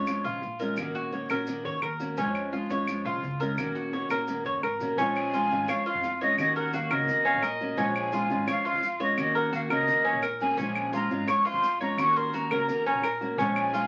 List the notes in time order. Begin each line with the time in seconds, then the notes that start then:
Already playing: F2 C#5
0.07 F3 G#3 C#4 F4, claves, maracas
0.24 A#1 F4, maracas
0.42 A#1, muted steel-string acoustic guitar stroke, maracas
0.59 G#3 C#4 F4 A#4, maracas
0.77 D#2 D#3 A#3 C#4 F#4, claves, maracas
0.86 A#1
0.94 F#4, maracas
1.12 D#3 A#3 C#4 F#4 C#5, maracas
1.29 A#1 A#3 C#4 F#4 A#4, claves, maracas
1.47 D#3 A#3 C#4 F#4, maracas
1.65 D#2 C#5, maracas
1.82 D#2 A#4, muted steel-string acoustic guitar stroke, claves, maracas
2.00 A#3 C#4 F#4, maracas
2.17 A#1 F3 G#3 C#4 F4, maracas
2.26 F2
2.35 claves, maracas
2.53 F3 G#3 C#4 F4, maracas
2.70 F2 G#3 C#4 F4 C#5, maracas
2.87 F3 G#3 C#4 F4, claves, maracas
3.05 A#1 F4, maracas
3.23 C#2, muted steel-string acoustic guitar stroke, maracas
3.40 G#3 C#4 F4 A#4, maracas
3.58 D#2 D#3 A#3 C#4 F#4, claves, maracas
3.66 A#1
3.75 F#4, maracas
3.93 D#3 A#3 C#4 F#4 C#5, maracas
4.10 A#1 A#3 C#4 F#4 A#4, claves, maracas
4.28 D#3 A#3 C#4 F#4, maracas
4.45 F#1 C#5, maracas
4.63 G#1 A#4, muted steel-string acoustic guitar stroke, claves, maracas
4.80 A#1 A#3 C#4 F#4, maracas
4.97 A#1 F3 G#3 C#4 F4, maracas
5.16 G#5, claves, maracas
5.33 F3 G#3 C#4 F4, maracas
5.51 G#1 G#3 C#4 F4, maracas
5.68 F3 G#3 C#4 F4 C#5 F5, claves, maracas
5.86 F4 F5, maracas
5.95 F2
6.03 muted steel-string acoustic guitar stroke, maracas
6.21 G#3 C#4 F4 C#5 D#5, maracas
6.38 D#2 D#3 A#3 C#4 F#4 D#5, claves, maracas
6.56 A#4 F#5, maracas
6.73 D#3 A#3 C#4 F#4 F5, maracas
6.91 C#2 A#3 C#4 F#4 A#4 D#5, claves, maracas
7.08 D#3 A#3 C#4 F#4, maracas
7.25 C#4 F5, maracas
7.34 A#1
7.42 A#4 D#5, muted steel-string acoustic guitar stroke, claves, maracas
7.61 A#3 C#4 F#4, maracas
7.77 A#1 F3 G#3 C#4 F4, maracas
7.95 G#5, claves, maracas
8.12 F3 G#3 C#4 F4, maracas
8.29 G#1 G#3 C#4 F4, maracas
8.47 F3 G#3 C#4 F4 C#5 F5, claves, maracas
8.65 F4 F5, maracas
8.73 F2
8.82 muted steel-string acoustic guitar stroke, maracas
9.00 G#3 C#4 F4 C#5 D#5, maracas
9.17 D#2 D#3 A#3 C#4 F#4 D#5, claves, maracas
9.35 A#4 F#5, maracas
9.52 D#3 A#3 C#4 F#4 F5, maracas
9.70 C#2 A#3 C#4 F#4 A#4 D#5, claves, maracas
9.88 D#3 A#3 C#4 F#4, maracas
10.04 C#4, maracas
10.13 A#1
10.22 A#4, muted steel-string acoustic guitar stroke, claves, maracas
10.40 A#3 C#4 F#4 G#5, maracas
10.57 A#1 F3 G#3 C#4 F4, maracas
10.75 claves, maracas
10.93 F3 G#3 C#4 F4 A#5, maracas
11.10 G#1 G#3 C#4 F4, maracas
11.28 F3 G#3 C#4 F4 C#5 C#6, claves, maracas
11.45 F4 C6, maracas
11.53 F2
11.63 muted steel-string acoustic guitar stroke, maracas
11.81 G#3 C#4 F4 C#5 A#5, maracas
11.97 D#2 D#3 A#3 C#4 F#4 C#6, claves, maracas
12.16 A#4 C6, maracas
12.33 D#3 A#3 C#4 F#4 A#5, maracas
12.50 C#2 A#3 C#4 F#4 A#4, claves, maracas
12.68 D#3 A#3 C#4 F#4 A#5, maracas
12.86 C#4, maracas
12.93 A#1
13.03 A#4, muted steel-string acoustic guitar stroke, claves, maracas
13.21 A#3 C#4 F#4, maracas
13.38 A#1 F3 G#3 C#4 F4, maracas
13.56 G#5, claves, maracas
13.73 F3 G#3 C#4 F4, maracas